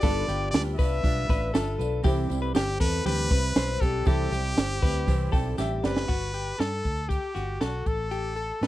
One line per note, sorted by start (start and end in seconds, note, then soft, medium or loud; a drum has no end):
0.00 0.25 G1 loud
0.00 0.28 G3 medium
0.00 0.03 B3 medium
0.00 2.01 B3 medium
0.00 0.03 D4 medium
0.00 2.01 D4 medium
0.00 0.29 D4 medium
0.00 0.03 F4 medium
0.00 2.01 F4 medium
0.00 0.28 F4 medium
0.00 2.05 G4 medium
0.00 0.28 A4 loud
0.00 2.01 A4 medium
0.00 0.27 B4 loud
0.00 0.48 D5 loud
0.00 kick loud
0.00 hi-hat pedal medium
0.00 open hi-hat loud
0.00 tambourine medium
0.28 0.50 G1 medium
0.28 0.52 D4 soft
0.28 0.53 F4 medium
0.28 0.76 G4 medium
0.28 0.53 B4 soft
0.28 hi-hat pedal medium
0.28 open hi-hat medium
0.28 tambourine medium
0.50 0.75 D2 medium
0.50 0.78 G3 medium
0.50 0.79 D4 medium
0.50 0.78 F4 medium
0.50 0.76 B4 medium
0.50 0.63 D5 loud
0.50 snare loud
0.50 hi-hat pedal medium
0.50 open hi-hat medium
0.50 tambourine medium
0.75 1.03 B4 medium
0.75 1.26 B4 medium
0.75 1.74 E5 medium
0.79 1.00 C2 loud
0.79 1.02 D4 soft
0.79 1.02 F4 medium
0.79 kick loud
0.79 hi-hat pedal medium
0.79 open hi-hat medium
0.79 tambourine soft
1.03 1.25 B1 loud
1.03 1.29 G3 medium
1.03 1.29 D4 medium
1.03 1.28 F4 medium
1.03 1.26 B4 medium
1.03 kick loud
1.03 hi-hat pedal medium
1.03 open hi-hat loud
1.27 1.51 A1 loud
1.27 1.53 D4 soft
1.27 1.54 F4 soft
1.27 1.54 B4 medium
1.27 1.53 B4 medium
1.27 kick loud
1.27 hi-hat pedal medium
1.27 open hi-hat medium
1.27 tambourine soft
1.53 1.76 G1 medium
1.53 1.79 G3 medium
1.53 1.79 D4 medium
1.53 1.78 F4 medium
1.53 2.02 A4 medium
1.53 1.77 B4 medium
1.53 snare loud
1.53 hi-hat pedal medium
1.53 open hi-hat loud
1.53 tambourine medium
1.78 2.01 B1 loud
1.78 2.03 D4 soft
1.78 2.03 F4 medium
1.78 2.04 B4 medium
1.78 hi-hat pedal medium
1.78 open hi-hat medium
1.78 tambourine medium
2.03 2.27 C2 loud
2.03 2.29 C3 medium
2.03 2.29 E3 medium
2.03 2.30 G3 medium
2.03 4.02 G3 medium
2.03 2.29 C4 loud
2.03 4.03 C4 medium
2.03 2.29 E4 loud
2.03 4.03 E4 medium
2.03 2.40 G4 loud
2.03 4.03 G4 medium
2.03 2.28 C5 medium
2.03 kick loud
2.03 hi-hat pedal medium
2.03 open hi-hat loud
2.03 tambourine medium
2.29 2.52 C2 medium
2.29 2.53 G3 medium
2.29 2.54 C4 medium
2.29 2.54 E4 medium
2.29 2.55 C5 medium
2.29 hi-hat pedal medium
2.29 open hi-hat medium
2.29 tambourine medium
2.42 2.54 B4 medium
2.54 2.77 G1 loud
2.54 2.80 G3 medium
2.54 2.80 C4 medium
2.54 2.79 E4 medium
2.54 2.80 G4 medium
2.54 2.79 G4 loud
2.54 2.78 C5 medium
2.54 snare loud
2.54 hi-hat pedal medium
2.54 open hi-hat medium
2.54 tambourine medium
2.79 3.02 E2 loud
2.79 3.04 G3 soft
2.79 3.04 C4 soft
2.79 3.04 E4 medium
2.79 3.05 A4 medium
2.79 3.04 B4 loud
2.79 3.05 C5 medium
2.79 kick loud
2.79 hi-hat pedal medium
2.79 open hi-hat medium
2.79 tambourine soft
3.05 3.27 D2 medium
3.05 3.31 C3 medium
3.05 3.31 E3 medium
3.05 3.31 G3 medium
3.05 3.30 C4 medium
3.05 3.29 E4 medium
3.05 3.31 G4 medium
3.05 3.82 B4 loud
3.05 3.29 C5 medium
3.05 hi-hat pedal medium
3.05 open hi-hat loud
3.30 3.52 C2 medium
3.30 3.54 G3 soft
3.30 3.54 C4 medium
3.30 3.55 E4 medium
3.30 3.56 B4 medium
3.30 3.56 C5 medium
3.30 kick loud
3.30 hi-hat pedal medium
3.30 open hi-hat medium
3.55 3.77 B1 medium
3.55 3.81 G3 medium
3.55 3.80 C4 medium
3.55 3.80 E4 medium
3.55 3.82 C5 medium
3.55 3.79 C5 medium
3.55 snare loud
3.55 hi-hat pedal medium
3.55 open hi-hat loud
3.55 tambourine medium
3.80 4.03 B1 medium
3.80 4.05 G3 soft
3.80 4.05 C4 soft
3.80 4.06 E4 soft
3.80 4.07 G4 medium
3.80 4.08 A4 medium
3.80 4.06 C5 medium
3.80 kick medium
3.80 hi-hat pedal medium
3.80 open hi-hat medium
3.80 tambourine medium
4.05 4.28 C2 medium
4.05 4.32 C3 medium
4.05 4.32 E3 medium
4.05 6.04 G3 medium
4.05 4.32 G3 medium
4.05 6.04 C4 medium
4.05 4.31 C4 medium
4.05 6.05 E4 medium
4.05 4.30 E4 medium
4.05 6.04 G4 medium
4.05 5.58 G4 loud
4.05 4.32 A4 medium
4.05 4.30 C5 medium
4.05 kick loud
4.05 hi-hat pedal medium
4.05 open hi-hat loud
4.05 tambourine medium
4.31 4.53 C2 medium
4.31 4.55 G3 soft
4.31 4.55 C4 soft
4.31 4.56 E4 soft
4.31 4.79 G4 medium
4.31 4.57 C5 medium
4.31 hi-hat pedal medium
4.31 open hi-hat medium
4.31 tambourine medium
4.56 4.78 G1 medium
4.56 4.82 G3 medium
4.56 4.82 C4 medium
4.56 4.82 E4 medium
4.56 4.81 C5 medium
4.56 snare loud
4.56 hi-hat pedal medium
4.56 open hi-hat medium
4.56 tambourine medium
4.82 5.04 D2 medium
4.82 5.06 G3 medium
4.82 5.06 C4 medium
4.82 5.07 E4 medium
4.82 5.30 B4 medium
4.82 5.07 C5 medium
4.82 kick loud
4.82 hi-hat pedal medium
4.82 open hi-hat medium
4.82 tambourine medium
5.07 5.29 C2 loud
5.07 5.33 C3 medium
5.07 5.33 E3 medium
5.07 5.33 G3 medium
5.07 5.33 C4 loud
5.07 5.32 E4 loud
5.07 5.31 C5 medium
5.07 kick medium
5.07 hi-hat pedal medium
5.07 open hi-hat loud
5.07 tambourine soft
5.32 5.55 B1 medium
5.32 5.56 G3 medium
5.32 5.57 C4 soft
5.32 5.58 E4 medium
5.32 5.58 A4 medium
5.32 5.58 C5 medium
5.32 5.56 G5 medium
5.32 kick loud
5.32 hi-hat pedal medium
5.32 open hi-hat medium
5.32 tambourine soft
5.57 5.80 A1 medium
5.57 5.83 G3 medium
5.57 5.83 C4 medium
5.57 5.82 E4 medium
5.57 6.06 G4 medium
5.57 5.81 C5 medium
5.57 5.82 E5 medium
5.57 snare medium
5.57 tambourine medium
5.82 6.05 F#1 medium
5.82 6.09 G3 soft
5.82 6.09 C4 medium
5.82 6.09 E4 medium
5.82 6.61 B4 loud
5.82 6.08 C5 medium
5.82 6.07 D5 medium
5.82 snare medium
5.82 tambourine medium
5.96 snare loud
6.08 6.52 G1 medium
6.08 6.34 F#4 medium
6.08 kick loud
6.08 crash medium
6.34 6.58 G4 medium
6.34 closed hi-hat medium
6.58 6.81 G2 medium
6.58 7.07 A4 medium
6.58 7.10 A4 medium
6.58 snare loud
6.58 closed hi-hat medium
6.85 7.17 D2 medium
6.85 kick medium
6.85 closed hi-hat medium
7.09 7.34 G4 medium
7.09 7.63 G4 medium
7.09 kick medium
7.09 closed hi-hat medium
7.35 7.57 G1 medium
7.35 7.60 F#4 medium
7.35 snare soft
7.35 closed hi-hat medium
7.61 7.83 B1 medium
7.61 7.88 F#4 medium
7.61 8.08 A4 medium
7.61 snare medium
7.61 closed hi-hat medium
7.86 8.51 A1 medium
7.86 8.67 A4 medium
7.86 kick medium
7.86 closed hi-hat medium
8.11 8.36 G4 medium
8.11 closed hi-hat medium
8.36 8.62 A4 medium
8.36 closed hi-hat medium
8.61 8.67 A2 medium
8.61 8.67 B4 medium
8.61 snare medium
8.61 closed hi-hat medium